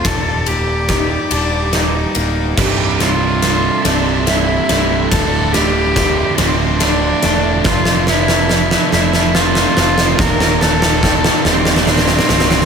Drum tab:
CC |------------------------|x-----------------------|------------------------|------------------------|
RD |x---x---x---x---x---x---|----x---x---x---x---x---|x---x---x---x---x---x---|------------------------|
SD |o-------o-------o-------|o---o---o---o---o---o---|o---o---o---o---o---o---|o-o-o-o-o-o-o-o-o-o-o-o-|
BD |o-------o---------------|o-----------------------|o-------o---------------|o-----------------------|

CC |------------------------|
RD |------------------------|
SD |o-o-o-o-o-o-o-oooooooooo|
BD |o-------o---------------|